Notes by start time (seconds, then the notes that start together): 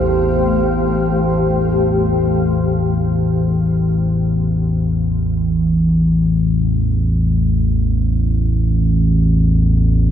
Already playing: A1 E2 A3 G4 C5 F5
1.45 A1 E2